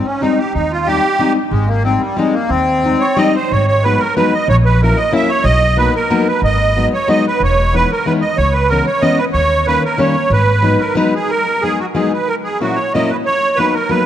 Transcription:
0.05 accordion C#4
0.21 steel-string acoustic guitar G3 G#3 C4 D#4, accordion D#4
0.38 accordion G4
0.54 upright bass D#2, accordion D#4
0.71 accordion F4
0.86 steel-string acoustic guitar G3 G#3 C4 D#4, accordion G4
1.19 steel-string acoustic guitar G3 G#3 C4 D#4
1.50 upright bass G#1, accordion G#3
1.67 accordion A#3
1.83 steel-string acoustic guitar G3 G#3 C4 D#4, accordion C4
1.98 accordion G3
2.16 steel-string acoustic guitar G3 G#3 C4 D#4, accordion G#3
2.32 accordion A#3
2.49 upright bass D#2, accordion C4
2.83 steel-string acoustic guitar G3 G#3 C4 D#4
3.00 accordion C#5
3.17 steel-string acoustic guitar G3 G#3 C4 D#4, accordion D#5
3.35 accordion C5
3.51 upright bass G#1, accordion C#5
3.67 accordion C#5
3.84 steel-string acoustic guitar F#3 G#3 B3 D#4, accordion B4
3.99 accordion A#4
4.16 steel-string acoustic guitar F#3 G#3 B3 D#4, accordion B4
4.33 accordion D#5
4.48 upright bass A#1, accordion C#5
4.65 accordion B4
4.82 steel-string acoustic guitar F#3 A#3 C#4 E4, accordion A#4
4.97 accordion D#5
5.12 steel-string acoustic guitar F#3 A#3 C#4 E4, accordion E5
5.29 accordion C#5
5.44 upright bass B1, accordion D#5
5.77 steel-string acoustic guitar F#3 A#3 B3 D#4, accordion B4
5.95 accordion A#4
6.10 steel-string acoustic guitar F#3 A#3 B3 D#4
6.28 accordion B4
6.42 upright bass G#1, accordion D#5
6.76 steel-string acoustic guitar F#3 G#3 B3 D#4
6.93 accordion C#5
7.08 steel-string acoustic guitar F#3 G#3 B3 D#4, accordion D#5
7.28 accordion B4
7.40 upright bass E1, accordion C#5
7.73 steel-string acoustic guitar E3 G#3 B3 D#4, accordion B4
7.92 accordion A#4
8.06 steel-string acoustic guitar E3 G#3 B3 D#4, accordion B4
8.21 accordion D#5
8.37 upright bass C#2, accordion C#5
8.53 accordion B4
8.68 steel-string acoustic guitar E3 G#3 B3 C#4, accordion A#4
8.86 accordion C#5
9.02 steel-string acoustic guitar E3 G#3 B3 C#4, accordion D#5
9.18 accordion B4
9.33 upright bass D#2, accordion C#5
9.67 steel-string acoustic guitar D#3 G3 A#3 C#4, accordion B4
9.85 accordion A#4
9.98 steel-string acoustic guitar D#3 G3 A#3 C#4, accordion C#5
10.30 upright bass G#1, accordion B4
10.62 steel-string acoustic guitar F#3 G#3 B3 D#4
10.80 accordion A#4
10.95 steel-string acoustic guitar F#3 G#3 B3 D#4, accordion B4
11.15 accordion G#4
11.29 accordion A#4
11.62 steel-string acoustic guitar F#3 G#3 B3 D#4, accordion G#4
11.79 accordion F#4
11.95 steel-string acoustic guitar F#3 G#3 B3 D#4, accordion G#4
12.13 accordion B4
12.28 accordion A#4
12.44 accordion G#4
12.60 steel-string acoustic guitar A#2 F#3 A#3 C#4 E4, accordion F#4
12.76 accordion C#5
12.94 steel-string acoustic guitar A#2 F#3 A#3 C#4 E4, accordion D#5
13.09 accordion B4
13.25 accordion C#5
13.56 steel-string acoustic guitar F#3 A#3 B3 D#4, accordion B4
13.74 accordion A#4
13.89 steel-string acoustic guitar F#3 A#3 B3 D#4, accordion B4

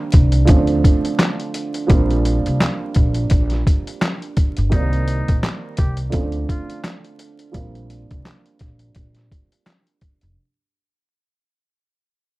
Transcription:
Already playing: upright piano D#3 G3 A#3 C4 D4
0.12 upright bass C2, kick, closed hi-hat
0.32 closed hi-hat
0.45 upright bass D2, upright piano D3 F3 A3 C4, kick, closed hi-hat
0.50 upright piano C#4
0.56 upright piano D4
0.67 closed hi-hat
0.84 kick, closed hi-hat
1.05 closed hi-hat
1.19 snare, clap, closed hi-hat
1.40 closed hi-hat
1.54 closed hi-hat
1.74 closed hi-hat
1.87 upright bass A#1, upright piano F3 G3 A#3 C4, kick, closed hi-hat
1.91 upright piano D4
2.10 closed hi-hat
2.25 closed hi-hat
2.46 upright bass C2, closed hi-hat
2.60 snare, clap, closed hi-hat
2.95 upright bass A#1, kick, closed hi-hat
3.14 closed hi-hat
3.30 upright bass A#1, kick, closed hi-hat
3.50 snare, closed hi-hat
3.67 kick, closed hi-hat
3.87 closed hi-hat
4.02 snare, clap, closed hi-hat
4.22 closed hi-hat
4.37 kick, closed hi-hat
4.57 upright bass G1, closed hi-hat
4.70 upright bass C2, upright piano D#3 G3 A#3 C4, muted trumpet D#4, kick, closed hi-hat
4.74 upright piano D5
4.93 closed hi-hat
5.08 closed hi-hat
5.28 upright bass A#1, kick, closed hi-hat
5.43 snare, clap, closed hi-hat
5.77 upright bass C2, muted trumpet G4, kick, closed hi-hat
5.97 closed hi-hat
6.10 upright piano D3 F3 A3 C4, kick, closed hi-hat
6.14 upright bass D2, upright piano C#4
6.21 upright piano D4
6.32 closed hi-hat
6.49 muted trumpet F4, kick, closed hi-hat
6.70 closed hi-hat
6.84 snare, clap, closed hi-hat
7.04 closed hi-hat
7.19 closed hi-hat
7.39 closed hi-hat
7.51 upright bass A#1, upright piano F3 G3 A#3 C4, kick, closed hi-hat
7.56 upright piano D4
7.75 closed hi-hat
7.90 closed hi-hat
8.11 upright bass C2, kick, closed hi-hat
8.25 snare, clap, closed hi-hat
8.46 closed hi-hat
8.59 upright bass A#1, kick, snare, closed hi-hat
8.79 closed hi-hat
8.95 upright bass A#1, kick, closed hi-hat
9.15 snare, closed hi-hat
9.32 kick, closed hi-hat
9.52 closed hi-hat
9.66 snare, clap, closed hi-hat
9.87 closed hi-hat
10.01 kick, closed hi-hat
10.21 upright bass F1, closed hi-hat

